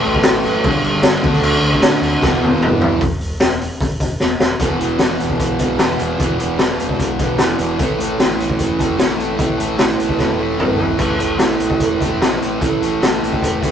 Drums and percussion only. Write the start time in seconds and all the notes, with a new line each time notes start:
0.05 crash
0.15 kick
0.23 snare, crash
0.43 snare, crash
0.64 kick, crash
0.84 crash
1.03 snare, crash
1.24 kick, crash
1.33 snare
1.43 crash
1.63 crash
1.73 kick
1.82 snare, crash
2.03 snare, crash
2.22 kick, snare
2.43 high tom
2.62 mid tom
2.81 floor tom
3.01 kick, open hi-hat
3.21 open hi-hat
3.40 snare, open hi-hat
3.61 open hi-hat
3.81 kick, open hi-hat
4.00 kick, open hi-hat
4.20 snare
4.40 snare
4.59 kick, closed hi-hat
4.80 closed hi-hat
4.99 snare, closed hi-hat
5.20 closed hi-hat
5.30 kick
5.40 kick, closed hi-hat
5.59 kick, closed hi-hat
5.79 snare, closed hi-hat
5.99 closed hi-hat
6.19 kick, closed hi-hat
6.39 closed hi-hat
6.59 snare, closed hi-hat
6.79 closed hi-hat
6.89 kick
6.99 kick, closed hi-hat
7.19 kick, closed hi-hat
7.38 snare, closed hi-hat
7.59 closed hi-hat
7.79 kick, closed hi-hat
8.00 closed hi-hat
8.19 snare, closed hi-hat
8.40 closed hi-hat
8.49 kick
8.59 kick, closed hi-hat
8.79 kick, closed hi-hat
8.99 snare, closed hi-hat
9.20 closed hi-hat
9.39 kick, closed hi-hat
9.60 closed hi-hat
9.79 snare, closed hi-hat
9.99 closed hi-hat
10.09 kick
10.19 kick, snare
10.59 mid tom
10.79 floor tom
10.98 kick, closed hi-hat, crash
11.20 closed hi-hat
11.39 snare, closed hi-hat
11.60 closed hi-hat
11.70 kick
11.80 kick, closed hi-hat
12.01 kick, closed hi-hat
12.22 snare, closed hi-hat
12.42 closed hi-hat
12.61 kick, closed hi-hat
12.82 closed hi-hat
13.02 snare, closed hi-hat
13.24 closed hi-hat
13.33 kick
13.43 kick, closed hi-hat
13.63 kick, closed hi-hat